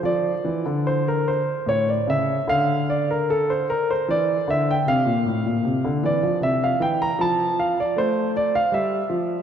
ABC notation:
X:1
M:3/4
L:1/16
Q:1/4=77
K:Dm
V:1 name="Grand piano"
d4 c B c2 ^c d e2 | f2 d B A c B c d2 e g | f6 d2 e f g b | a2 f d c2 d f e2 z2 |]
V:2 name="Grand piano" clef=bass
F,2 E, D,4- D, A,,2 ^C,2 | D,8 E,2 D,2 | C, B,, A,, B,, C, D, E, F, C,2 E,2 | F,4 A,4 G,2 F,2 |]